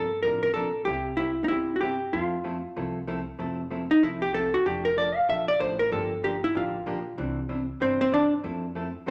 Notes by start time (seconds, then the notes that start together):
Already playing: G1 A4
0.23 A1 C3 F3 A#3 D4 A#4
0.43 A#4
0.54 A#1 C3 F3 A#3 D4 A4 A#4
0.85 C2 C3 G3 C4 E4 G4
1.17 C3 G3 C4 E4 G4
1.44 D#4
1.48 G1 C3 G3 C4 E4 G4
1.76 F#4
1.81 C3 G3 C4 E4 G4
2.13 F2 F3 A3 C4 E4 F4 A4
2.44 F3 A3 C4 E4 A4
2.76 C2 F3 A3 C4 E4 A4
3.07 F3 A3 C4 E4 A4
3.39 F1 F3 A3 C4 E4 A4
3.70 F3 A3 C4 E4 A4
3.91 D#4
4.02 C2 F3 A3 C4 E4 A4
4.22 G4
4.33 F3 A3 C4 E4 A4
4.54 F#4
4.65 F1 F3 A3 D4 G4 A4
4.85 A#4
4.96 F3 A3 D4 A4 D5
5.16 F5
5.29 A#1 F3 A3 D4 A4 E5
5.48 D5
5.59 A1 F3 A3 D4 A4 C5
5.79 A#4
5.92 G1 D3 F3 A#3 D4 G4 A4
6.23 D3 F3 A#3 D4 G4
6.44 E4
6.55 A1 D3 F3 A#3 D4 F4 G4
6.86 A#1 D3 F3 A#3 D4 G4
7.18 C2 C3 E3 C4 D4
7.49 C3 E3 C4 D4
7.80 G1 C3 E3 C4 D4 C5
8.01 C4 C5
8.12 C3 E3 C4 D4 D5
8.44 F2 F3 A3 C4 E4 A4
8.75 F3 A3 C4 E4 A4
9.06 C2 F3 A3 C4